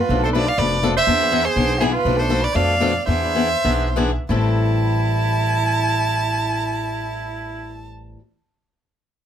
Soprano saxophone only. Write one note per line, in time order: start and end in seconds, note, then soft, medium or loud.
0.00 0.23 F4 medium
0.24 0.28 A4 medium
0.33 0.49 B4 medium
0.47 0.60 D5 medium
0.59 0.83 B4 medium
0.97 1.46 C5 medium
1.45 1.81 G#4 medium
1.79 1.92 E4 medium
1.92 2.19 F4 medium
2.17 2.43 A4 medium
2.41 2.56 B4 medium
2.54 3.06 D5 medium
3.06 4.10 C5 medium
4.30 7.86 E4 medium